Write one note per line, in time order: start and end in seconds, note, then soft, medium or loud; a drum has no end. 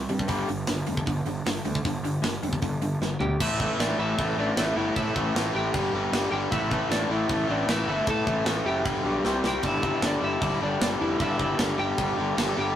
0.09 0.24 G2 medium
0.09 0.27 C3 medium
0.09 0.27 G3 medium
0.09 open hi-hat medium
0.19 kick medium
0.28 0.43 G1 medium
0.28 0.47 G2 medium
0.28 0.47 D3 medium
0.28 0.47 G3 medium
0.28 kick loud
0.28 open hi-hat medium
0.48 0.63 G1 medium
0.48 0.66 G2 medium
0.48 0.66 D3 medium
0.48 open hi-hat medium
0.67 0.83 G1 medium
0.67 0.86 G2 medium
0.67 0.86 D3 medium
0.67 snare loud
0.67 open hi-hat medium
0.87 1.02 F1 medium
0.87 1.05 G2 medium
0.87 1.05 D3 medium
0.87 open hi-hat medium
0.97 kick medium
1.07 1.21 G1 medium
1.07 1.25 G2 medium
1.07 1.25 D3 medium
1.07 kick medium
1.07 open hi-hat medium
1.26 1.40 G1 medium
1.26 1.44 G2 medium
1.26 1.44 D3 medium
1.26 open hi-hat soft
1.46 1.60 G1 medium
1.46 1.64 G2 medium
1.46 1.64 D3 medium
1.46 snare loud
1.46 open hi-hat medium
1.65 1.79 D2 medium
1.65 1.83 G2 medium
1.65 1.83 D3 medium
1.65 open hi-hat medium
1.75 kick medium
1.85 1.99 G1 medium
1.85 2.03 G2 medium
1.85 2.03 D3 medium
1.85 kick medium
1.85 open hi-hat medium
2.03 2.17 G1 loud
2.03 2.21 G2 medium
2.03 2.21 D3 medium
2.03 open hi-hat medium
2.22 2.37 G1 medium
2.22 2.40 G2 medium
2.22 2.41 D3 medium
2.22 snare loud
2.22 open hi-hat medium
2.43 2.57 F1 medium
2.43 2.60 G2 medium
2.43 2.61 D3 medium
2.43 open hi-hat medium
2.53 kick medium
2.62 2.76 G1 medium
2.62 2.80 G2 medium
2.62 2.80 D3 medium
2.62 kick medium
2.62 open hi-hat medium
2.82 2.96 G1 medium
2.82 2.99 G2 medium
2.82 3.00 D3 medium
2.82 open hi-hat medium
3.01 3.15 G1 medium
3.01 3.19 G2 medium
3.01 3.20 D3 medium
3.01 snare medium
3.20 3.34 D2 medium
3.20 3.38 G2 medium
3.20 3.39 D3 medium
3.20 3.39 G4 medium
3.20 3.41 G5 medium
3.20 floor tom medium
3.40 3.68 A1 loud
3.40 3.59 A2 medium
3.40 3.59 E3 medium
3.40 3.60 A3 loud
3.40 3.77 E4 medium
3.40 3.81 E5 loud
3.40 kick loud
3.40 crash loud
3.40 crash medium
3.60 3.77 A2 medium
3.60 3.78 E3 medium
3.60 3.78 A3 loud
3.60 kick medium
3.78 3.92 A1 medium
3.78 3.98 A2 medium
3.78 3.98 E3 loud
3.78 3.98 A3 loud
3.78 3.97 D4 medium
3.78 4.00 D5 medium
3.78 snare loud
3.78 crash medium
3.99 4.13 A1 medium
3.99 4.16 A2 medium
3.99 4.16 E3 medium
3.99 4.17 A3 loud
3.99 4.35 E4 medium
3.99 4.39 E5 medium
4.17 4.32 A1 loud
4.17 4.36 A2 medium
4.17 4.37 E3 medium
4.17 4.38 A3 loud
4.17 kick loud
4.17 crash medium
4.37 4.51 A1 medium
4.37 4.55 A2 medium
4.37 4.56 E3 loud
4.37 4.56 A3 loud
4.37 4.56 D4 medium
4.37 4.57 D5 medium
4.57 4.71 A1 loud
4.57 4.75 A2 medium
4.57 4.76 E3 medium
4.57 4.76 A3 loud
4.57 4.62 D4 medium
4.57 4.63 D5 medium
4.57 snare loud
4.57 crash medium
4.76 4.90 G1 medium
4.76 4.94 A2 medium
4.76 4.95 E3 medium
4.76 4.95 A3 loud
4.76 4.94 E4 medium
4.76 4.95 E5 medium
4.96 5.13 A2 loud
4.96 5.10 A2 loud
4.96 5.13 E3 loud
4.96 5.14 A3 loud
4.96 5.32 E4 medium
4.96 5.32 E5 loud
4.96 kick loud
4.96 crash medium
5.14 5.30 A1 medium
5.14 5.33 A2 medium
5.14 5.34 E3 loud
5.14 5.35 A3 medium
5.14 kick medium
5.35 5.49 A1 medium
5.35 5.53 A2 medium
5.35 5.53 E3 loud
5.35 5.54 A3 loud
5.35 snare loud
5.35 crash medium
5.54 5.69 A1 medium
5.54 5.72 A2 medium
5.54 5.73 E3 medium
5.54 5.73 A3 loud
5.54 6.29 G4 medium
5.54 6.31 G5 loud
5.74 5.88 G1 loud
5.74 5.92 G2 loud
5.74 5.92 D3 loud
5.74 5.93 G3 loud
5.74 kick loud
5.74 crash medium
5.93 6.07 G1 loud
5.93 6.11 G2 loud
5.93 6.11 D3 loud
5.93 6.12 G3 loud
6.12 6.26 G1 medium
6.12 6.30 G2 loud
6.12 6.30 D3 loud
6.12 6.31 G3 loud
6.12 snare loud
6.12 crash medium
6.31 6.46 G1 medium
6.31 6.50 G2 medium
6.31 6.50 D3 medium
6.31 6.50 G3 loud
6.31 6.37 G4 medium
6.31 6.37 G5 medium
6.51 6.80 A1 loud
6.51 6.69 A2 loud
6.51 6.70 E3 medium
6.51 6.70 A3 loud
6.51 6.88 E4 medium
6.51 6.92 E5 loud
6.51 kick loud
6.51 crash medium
6.70 6.88 A2 medium
6.70 6.89 E3 loud
6.70 6.89 A3 loud
6.70 kick medium
6.90 7.04 A1 medium
6.90 7.08 A2 medium
6.90 7.08 E3 loud
6.90 7.09 A3 loud
6.90 7.09 D4 medium
6.90 7.12 D5 loud
6.90 snare loud
6.90 crash medium
7.09 7.24 A1 medium
7.09 7.26 A2 loud
7.09 7.27 E3 loud
7.09 7.27 A3 loud
7.09 7.47 E4 medium
7.09 7.50 E5 loud
7.27 7.43 A1 loud
7.27 7.46 A2 medium
7.27 7.47 E3 medium
7.27 7.47 A3 loud
7.27 kick loud
7.27 crash medium
7.48 7.62 A1 loud
7.48 7.65 A2 loud
7.48 7.66 E3 loud
7.48 7.66 A3 loud
7.48 7.68 D4 medium
7.48 7.70 D5 medium
7.66 7.82 A1 medium
7.66 7.85 A2 medium
7.66 7.85 E3 loud
7.66 7.86 A3 loud
7.66 7.87 E4 medium
7.66 snare loud
7.66 crash medium
7.70 7.88 E5 loud
7.86 8.01 G1 loud
7.86 8.05 A2 medium
7.86 8.05 E3 medium
7.86 8.06 A3 loud
7.86 8.06 E4 medium
7.86 8.09 E5 medium
8.06 8.25 A2 medium
8.06 8.21 A2 loud
8.06 8.26 E3 loud
8.06 8.26 A3 loud
8.06 8.44 A4 medium
8.06 kick loud
8.06 crash medium
8.10 8.45 A5 loud
8.27 8.41 A1 loud
8.27 8.44 A2 loud
8.27 8.44 E3 loud
8.27 8.45 A3 loud
8.27 kick medium
8.45 8.60 A1 medium
8.45 8.64 A2 medium
8.45 8.64 E3 loud
8.45 8.64 A3 loud
8.45 snare loud
8.45 crash medium
8.65 8.86 F#1 medium
8.65 8.84 A2 medium
8.65 8.84 E3 medium
8.65 8.84 A3 loud
8.65 9.40 G4 medium
8.65 9.46 G5 loud
8.84 9.00 G1 loud
8.84 9.02 G2 medium
8.84 9.03 D3 loud
8.84 9.04 G3 loud
8.84 kick loud
8.84 crash medium
9.03 9.18 B1 medium
9.03 9.23 G2 medium
9.03 9.23 D3 loud
9.03 9.24 G3 loud
9.24 9.38 C2 medium
9.24 9.42 C3 medium
9.24 9.43 G3 loud
9.24 9.43 C4 loud
9.24 snare medium
9.43 9.58 C2 medium
9.43 9.62 C3 medium
9.43 9.63 G3 medium
9.43 9.62 C4 medium
9.43 9.63 G4 medium
9.43 snare loud
9.48 9.66 G5 medium
9.63 9.92 G1 medium
9.63 9.81 G2 loud
9.63 9.81 D3 loud
9.63 9.83 G3 loud
9.63 10.01 E4 medium
9.63 kick loud
9.63 crash medium
9.67 10.06 E5 loud
9.82 10.00 G2 medium
9.82 10.00 D3 loud
9.82 10.02 G3 loud
9.82 kick medium
10.01 10.16 G1 loud
10.01 10.20 G2 loud
10.01 10.20 D3 loud
10.01 10.21 G3 loud
10.01 10.21 D4 medium
10.01 snare loud
10.01 crash medium
10.06 10.24 D5 loud
10.20 10.36 G1 medium
10.20 10.38 G2 medium
10.20 10.39 D3 medium
10.20 10.40 G3 medium
10.20 10.59 E4 medium
10.20 10.59 E5 loud
10.39 10.56 G1 loud
10.39 10.58 G2 medium
10.39 10.58 D3 medium
10.39 10.60 G3 loud
10.39 kick loud
10.39 crash medium
10.59 10.76 G1 medium
10.59 10.77 G2 loud
10.59 10.77 D3 medium
10.59 10.78 G3 loud
10.59 10.80 D4 medium
10.64 10.82 D5 medium
10.78 10.95 G1 medium
10.78 10.97 G2 medium
10.78 10.98 D3 medium
10.78 10.98 G3 medium
10.78 10.86 D4 medium
10.78 snare loud
10.78 crash medium
10.83 10.88 D5 medium
10.98 11.15 F1 medium
10.98 11.17 G2 medium
10.98 11.17 D3 medium
10.98 11.18 G3 loud
10.98 11.19 E4 medium
11.02 11.21 E5 medium
11.18 11.37 G2 medium
11.18 11.34 G2 loud
11.18 11.37 D3 loud
11.18 11.38 G3 loud
11.18 11.57 E4 medium
11.18 kick loud
11.18 crash medium
11.22 11.57 E5 medium
11.38 11.54 G1 loud
11.38 11.56 G2 medium
11.38 11.57 D3 medium
11.38 11.58 G3 loud
11.38 kick medium
11.57 11.73 G1 medium
11.57 11.77 G2 loud
11.57 11.77 D3 loud
11.57 11.79 G3 loud
11.57 snare loud
11.57 crash medium
11.78 11.93 G1 medium
11.78 11.97 G2 medium
11.78 11.98 D3 medium
11.78 11.98 G3 medium
11.78 12.53 G4 medium
11.78 12.59 G5 loud
11.98 12.12 G1 loud
11.98 12.16 G2 medium
11.98 12.16 D3 loud
11.98 12.17 G3 medium
11.98 kick loud
11.98 crash medium
12.17 12.32 G1 medium
12.17 12.35 G2 medium
12.17 12.35 D3 loud
12.17 12.37 G3 loud
12.36 12.52 G1 medium
12.36 12.56 G2 medium
12.36 12.56 D3 medium
12.36 12.57 G3 medium
12.36 snare loud
12.36 crash medium
12.57 12.76 G1 medium
12.57 12.75 G2 medium
12.57 12.76 D3 loud
12.57 12.76 G3 medium
12.57 12.76 G4 medium
12.57 12.76 G5 medium